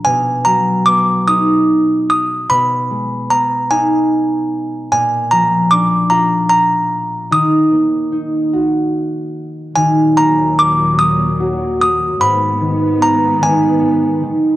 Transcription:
<<
  \new Staff \with { instrumentName = "Music box" } { \time 6/8 \key ees \minor \tempo 4. = 49 aes''8 bes''8 d'''8 dis'''4 dis'''8 | ces'''4 bes''8 aes''4 r8 | aes''8 bes''8 d'''8 bes''8 bes''4 | ees'''2 r4 |
aes''8 bes''8 d'''8 ees'''4 ees'''8 | ces'''4 bes''8 aes''4 r8 | }
  \new Staff \with { instrumentName = "Harp" } { \time 6/8 \key ees \minor b,8 fis8 b8 dis'4. | ces8 aes8 ces'8 ees'4. | bes,8 f8 d'8 f'4. | ees8 bes8 ees'8 ges'4. |
ees8 bes8 bes'8 bes8 ges'8 bes8 | aes,8 ees8 ces'8 ees8 aes8 ees8 | }
  \new Staff \with { instrumentName = "String section" } { \clef bass \time 6/8 \key ees \minor r2. | r2. | r2. | r2. |
<ees, bes, ges>2. | <aes, ees ces'>2. | }
>>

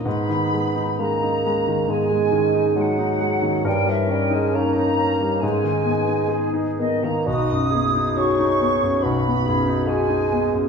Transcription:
<<
  \new Staff \with { instrumentName = "Flute section" } { \time 4/4 \key gis \minor \tempo 4 = 68 b''4 ais''4 gis''4 fis''4 | g''16 e''16 g''16 gis''16 ais''4 gis''4. dis''16 ais''16 | dis'''4 cis'''4 b''4 gis''4 | }
  \new Staff \with { instrumentName = "French horn section" } { \time 4/4 \key gis \minor <dis' gis'>2 <dis' gis'>2 | <dis' cis''>4 <dis' cis''>4 <dis' b'>2 | <dis' fis'>2 <dis' fis'>2 | }
  \new Staff \with { instrumentName = "Clarinet" } { \time 4/4 \key gis \minor dis'4 cis'4 b8 cis'8 dis'8 gis'8 | ais'4 dis'4 cis'8 b8 gis'8 r8 | fis'8 gis'4. fis'8 gis'4. | }
  \new Staff \with { instrumentName = "Grand piano" } { \time 4/4 \key gis \minor gis,16 dis16 gis16 dis'16 gis16 dis'16 gis16 dis16 gis,16 gis16 dis16 dis'16 gis16 dis'16 gis16 dis16 | g,16 g16 cis'16 dis'16 cis'16 dis'16 cis'16 g16 gis,16 dis16 b16 dis'16 gis'16 dis'16 b16 dis16 | b,,16 fis,16 b16 dis'16 fis'16 dis'16 b16 fis,16 b,,16 b16 fis,16 dis'16 fis'16 dis'16 b16 fis,16 | }
  \new Staff \with { instrumentName = "Bassoon" } { \clef bass \time 4/4 \key gis \minor b4 ais4 gis4 fis4 | g16 e16 g16 gis16 ais4 gis4. dis16 ais16 | dis'8. r16 cis'4 b4 gis4 | }
>>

